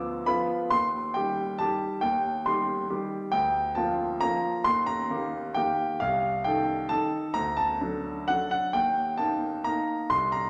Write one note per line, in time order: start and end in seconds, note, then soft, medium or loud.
0.00 0.29 D2 medium
0.00 0.24 F3 soft
0.00 0.24 B3 soft
0.00 0.24 F4 soft
0.00 0.26 D6 medium
0.00 0.29 E6 loud
0.26 0.68 F3 soft
0.26 0.68 B3 soft
0.26 0.69 F4 medium
0.26 0.72 B5 loud
0.70 1.14 D#2 medium
0.70 1.15 C6 loud
1.14 1.55 D#3 soft
1.14 1.56 G3 soft
1.14 1.56 G4 soft
1.14 1.59 G5 medium
1.59 1.99 D#3 soft
1.59 1.99 G3 soft
1.59 2.00 G4 medium
1.59 2.03 A5 medium
2.01 2.45 D#2 medium
2.01 2.46 G5 medium
2.46 2.86 D#3 soft
2.46 2.86 G3 soft
2.46 2.86 G4 soft
2.46 2.90 C6 medium
2.89 3.29 D#3 soft
2.89 3.29 G3 soft
2.89 3.30 G4 medium
3.32 3.75 D2 medium
3.32 3.75 G5 loud
3.75 4.18 F3 soft
3.75 4.18 A#3 soft
3.75 4.19 F4 medium
3.75 4.21 A5 medium
4.21 4.62 F3 soft
4.21 4.62 A#3 soft
4.21 4.62 F4 medium
4.21 4.65 A#5 loud
4.64 5.09 D#2 medium
4.64 4.87 C6 loud
4.86 5.56 A#5 loud
5.10 5.52 D#3 soft
5.10 5.52 A#3 soft
5.10 5.53 G4 soft
5.54 5.96 D#3 soft
5.54 5.97 A#3 medium
5.54 5.97 G4 medium
5.54 6.00 G5 loud
6.00 6.44 C2 medium
6.00 6.45 F5 loud
6.44 6.86 D#3 soft
6.44 6.86 D#4 soft
6.44 6.87 A4 soft
6.44 6.90 G5 medium
6.89 7.32 D#3 soft
6.89 7.32 D#4 medium
6.89 7.33 A4 medium
6.89 7.36 A5 loud
7.34 7.80 D2 medium
7.34 7.58 A#5 loud
7.57 8.28 A5 loud
7.81 8.25 F#3 soft
7.81 8.25 D4 soft
7.81 8.25 A4 soft
8.28 8.71 F#3 soft
8.28 8.71 D4 soft
8.28 8.71 A4 soft
8.28 8.50 F#5 loud
8.51 8.74 F#5 medium
8.73 9.18 D#2 medium
8.73 9.19 G5 medium
9.18 9.62 A#3 soft
9.18 9.62 D#4 soft
9.18 9.66 A5 medium
9.64 10.08 A#3 soft
9.64 10.08 D#4 soft
9.64 10.11 A#5 medium
10.10 10.50 C2 medium
10.10 10.33 C6 loud
10.32 10.50 A#5 medium